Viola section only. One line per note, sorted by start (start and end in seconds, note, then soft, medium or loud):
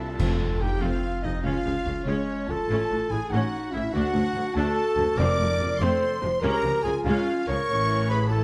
0.00 0.19 G3 soft
0.00 0.18 C4 soft
0.19 0.39 A3 medium
0.19 0.39 C4 medium
0.40 0.48 F3 medium
0.40 0.48 A3 medium
0.60 0.68 C3 medium
0.60 0.68 F3 medium
0.81 1.01 A3 medium
0.81 1.01 C4 medium
1.24 1.32 C3 medium
1.24 1.32 F3 medium
1.42 1.63 G#3 medium
1.42 1.63 C#4 medium
1.65 1.73 F3 medium
1.65 1.73 G#3 medium
1.85 1.93 C#3 medium
1.85 1.93 F3 soft
2.07 2.27 G#3 medium
2.07 2.26 C#4 medium
2.50 2.58 C#3 medium
2.50 2.58 F3 medium
2.71 2.90 A3 medium
2.71 2.90 C#4 medium
2.91 2.99 E3 medium
2.91 2.99 A3 medium
3.12 3.21 C#3 medium
3.12 3.20 E3 medium
3.33 3.52 A3 medium
3.33 3.52 C#4 medium
3.74 3.82 C#3 medium
3.74 3.83 E3 medium
3.94 4.13 A3 medium
3.94 4.13 D4 medium
4.15 4.23 F#3 medium
4.15 4.23 A3 medium
4.35 4.43 D3 medium
4.35 4.43 F#3 medium
4.54 4.74 A3 loud
4.54 4.75 D4 loud
4.97 5.05 D3 medium
4.97 5.05 F#3 medium
5.18 5.38 A3 loud
5.18 5.38 C4 loud
5.40 5.48 F3 medium
5.40 5.48 A3 medium
5.60 5.69 C3 medium
5.60 5.68 F3 medium
5.81 6.00 A3 loud
5.81 6.01 C4 loud
6.22 6.30 C3 medium
6.22 6.30 F3 medium
6.42 6.62 G#3 loud
6.42 6.62 C#4 loud
6.65 6.73 F3 medium
6.65 6.73 G#3 medium
6.85 6.93 C#3 medium
6.85 6.94 F3 medium
7.06 7.25 G#3 loud
7.06 7.25 C#4 loud
7.49 7.57 C#3 medium
7.49 7.57 F3 medium
7.70 8.28 E3 loud
7.70 8.28 C#4 medium
8.30 8.44 A3 medium
8.30 8.44 C#4 loud